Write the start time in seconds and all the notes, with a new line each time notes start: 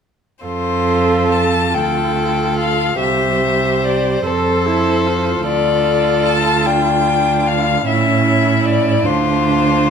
0.45 F2 F4 A4 C5
1.32 A5
1.75 D2 F4 A4 G5
2.59 F5
3.00 C2 G4 C5 E5
3.84 D5
4.25 F2 A4 C5
4.66 E4
5.07 F4
5.47 D2 A4 D5
6.26 A5
6.66 D4 G5
7.47 F5
7.88 A2 C#4 E4 E5
8.66 D5
9.05 D2 D4 F4 C5